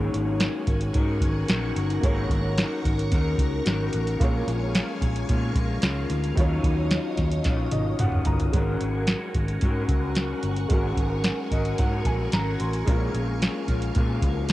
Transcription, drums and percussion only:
0.14 closed hi-hat
0.40 snare, closed hi-hat
0.67 kick, closed hi-hat
0.81 closed hi-hat
0.94 kick, closed hi-hat
1.21 kick, closed hi-hat
1.48 snare, closed hi-hat
1.76 closed hi-hat
1.90 closed hi-hat
2.03 kick, closed hi-hat
2.30 kick, closed hi-hat
2.58 snare, closed hi-hat
2.85 kick, closed hi-hat
2.99 closed hi-hat
3.12 kick, closed hi-hat
3.38 kick, closed hi-hat
3.66 snare, closed hi-hat
3.93 closed hi-hat
4.07 closed hi-hat
4.20 kick, closed hi-hat
4.48 closed hi-hat
4.75 snare, closed hi-hat
5.02 kick, closed hi-hat
5.16 closed hi-hat
5.29 kick, closed hi-hat
5.55 kick, closed hi-hat
5.82 snare, closed hi-hat
6.10 closed hi-hat
6.24 closed hi-hat
6.37 kick, closed hi-hat
6.63 kick, closed hi-hat
6.91 snare, closed hi-hat
7.17 kick, snare, closed hi-hat
7.31 closed hi-hat
7.44 kick, snare, closed hi-hat
7.71 closed hi-hat, high tom
7.99 closed hi-hat, mid tom
8.12 mid tom
8.25 closed hi-hat, floor tom
8.40 closed hi-hat, floor tom
8.53 kick, closed hi-hat
8.81 closed hi-hat
9.07 snare, closed hi-hat
9.35 kick, closed hi-hat
9.48 closed hi-hat
9.61 kick, closed hi-hat
9.88 kick, closed hi-hat
10.15 snare, closed hi-hat
10.43 closed hi-hat
10.56 closed hi-hat
10.70 kick, closed hi-hat
10.97 kick, closed hi-hat
11.24 snare, closed hi-hat
11.51 kick, closed hi-hat
11.65 closed hi-hat
11.78 kick, closed hi-hat
12.05 kick, closed hi-hat
12.32 snare, closed hi-hat
12.60 closed hi-hat
12.73 closed hi-hat
12.87 kick, closed hi-hat
13.15 closed hi-hat
13.42 snare, closed hi-hat
13.68 kick, closed hi-hat
13.82 closed hi-hat
13.95 kick, closed hi-hat
14.22 kick, closed hi-hat
14.49 closed hi-hat

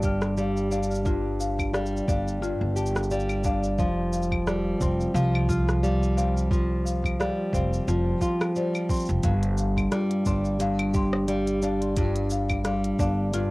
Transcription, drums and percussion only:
0.03 kick, shaker
0.22 cross-stick, shaker
0.37 shaker
0.57 shaker
0.72 shaker
0.83 shaker
0.91 shaker
0.95 shaker
1.06 kick, shaker
1.40 shaker
1.59 kick, claves, shaker
1.74 cross-stick, shaker
1.86 shaker
1.97 shaker
2.08 kick, shaker
2.28 shaker
2.43 shaker
2.77 shaker
2.86 shaker
2.96 cross-stick, shaker
3.03 shaker
3.11 shaker
3.20 shaker
3.29 claves, shaker
3.44 kick, shaker
3.64 shaker
3.79 kick, shaker
4.13 shaker
4.23 shaker
4.32 kick, claves
4.47 cross-stick, shaker
4.81 kick, shaker
5.01 shaker
5.16 shaker
5.35 claves
5.49 kick, shaker
5.69 cross-stick, shaker
5.84 shaker
6.03 shaker
6.18 shaker
6.37 shaker
6.51 kick, shaker
6.87 shaker
7.04 kick, claves, shaker
7.21 cross-stick, shaker
7.53 kick, shaker
7.73 shaker
7.88 shaker
8.21 kick, shaker
8.41 cross-stick, claves, shaker
8.56 shaker
8.75 claves, shaker
8.89 kick, shaker
8.93 shaker
8.96 shaker
8.99 shaker
9.02 shaker
9.05 shaker
9.09 shaker
9.23 kick, closed hi-hat, shaker
9.43 closed hi-hat
9.58 shaker
9.77 kick, claves, shaker
9.92 cross-stick, closed hi-hat, shaker
10.11 closed hi-hat
10.26 kick, shaker
10.45 shaker
10.60 closed hi-hat, shaker
10.79 closed hi-hat, claves
10.94 kick, shaker
11.13 cross-stick
11.28 closed hi-hat, shaker
11.47 closed hi-hat, shaker
11.63 shaker
11.82 closed hi-hat
11.97 kick, closed hi-hat, shaker
12.16 closed hi-hat
12.30 shaker
12.50 kick, claves, shaker
12.65 cross-stick, closed hi-hat, shaker
12.84 closed hi-hat
12.99 kick, shaker
13.34 closed hi-hat, shaker

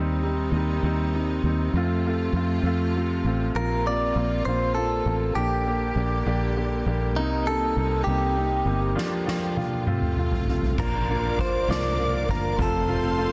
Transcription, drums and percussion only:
8.98 snare
9.28 snare
9.57 high tom
9.86 mid tom
10.01 mid tom
10.16 mid tom
10.32 floor tom
10.47 floor tom
10.63 floor tom
10.78 kick, crash
11.09 ride
11.39 kick, ride
11.70 snare, ride
11.99 ride
12.29 kick, ride
12.59 kick, ride
12.89 ride
13.19 ride

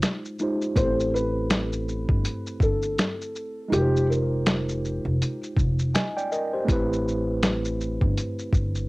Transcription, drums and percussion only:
0.02 finger snap, snare, closed hi-hat, shaker
0.25 shaker
0.39 shaker
0.61 shaker
0.76 kick, closed hi-hat, shaker
1.00 shaker
1.16 shaker
1.50 finger snap, snare, closed hi-hat, shaker
1.72 shaker
1.88 shaker
2.09 kick
2.25 closed hi-hat, shaker
2.46 shaker
2.60 kick, shaker
2.82 shaker
2.98 finger snap, snare, closed hi-hat, shaker
3.21 shaker
3.35 shaker
3.73 closed hi-hat, shaker
3.96 shaker
4.12 shaker
4.46 finger snap, snare, closed hi-hat, shaker
4.69 shaker
4.85 shaker
5.22 closed hi-hat, shaker
5.43 shaker
5.57 kick, shaker
5.79 shaker
5.95 finger snap, snare, closed hi-hat, shaker
6.18 shaker
6.32 shaker
6.68 kick, closed hi-hat, shaker
6.93 shaker
7.08 shaker
7.43 finger snap, snare, closed hi-hat, shaker
7.65 shaker
7.81 shaker
8.01 kick
8.17 closed hi-hat, shaker
8.39 shaker
8.53 kick, shaker
8.75 shaker

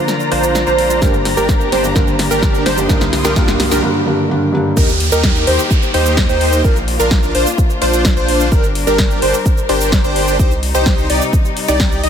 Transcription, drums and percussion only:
0.08 snare, shaker
0.20 shaker
0.32 open hi-hat
0.43 shaker
0.55 snare, shaker
0.67 shaker
0.78 open hi-hat
0.90 shaker
1.02 kick, snare, shaker
1.14 shaker
1.25 snare, open hi-hat
1.37 shaker
1.49 kick, snare, shaker
1.61 shaker
1.72 snare, open hi-hat
1.84 shaker
1.96 kick, snare, shaker
2.07 shaker
2.19 snare, open hi-hat
2.31 shaker
2.43 kick, snare, shaker
2.54 shaker
2.66 snare, open hi-hat
2.78 shaker
2.89 kick, snare, shaker
3.01 snare, shaker
3.13 snare, open hi-hat
3.25 snare, shaker
3.36 kick, snare, shaker
3.48 snare, shaker
3.60 snare, open hi-hat
3.71 snare, shaker
4.77 kick, crash, shaker
4.89 shaker
5.00 open hi-hat
5.12 shaker
5.23 kick, snare, shaker
5.36 shaker
5.47 open hi-hat
5.59 shaker
5.71 kick, shaker
5.82 shaker
5.94 open hi-hat
6.06 shaker
6.17 kick, snare, shaker
6.29 shaker
6.41 open hi-hat
6.53 shaker
6.64 kick, shaker
6.76 shaker
6.88 open hi-hat
7.00 shaker
7.11 kick, snare, shaker
7.23 shaker
7.35 open hi-hat
7.47 shaker
7.58 kick, shaker
7.70 shaker
7.82 open hi-hat
7.93 shaker
8.05 kick, snare, shaker
8.17 shaker
8.28 open hi-hat
8.40 shaker
8.52 kick, shaker
8.64 shaker
8.75 open hi-hat
8.87 shaker
8.98 kick, snare, shaker
9.11 shaker
9.22 open hi-hat
9.34 shaker
9.46 kick, shaker
9.57 shaker
9.69 open hi-hat
9.81 shaker
9.92 kick, snare, shaker
10.04 shaker
10.16 open hi-hat
10.28 shaker
10.39 kick, shaker
10.51 shaker
10.63 open hi-hat
10.75 shaker
10.86 kick, snare, shaker
10.98 shaker
11.10 open hi-hat
11.22 shaker
11.33 kick, shaker
11.45 shaker
11.57 open hi-hat
11.68 shaker
11.80 kick, snare, shaker
11.92 shaker
12.03 open hi-hat

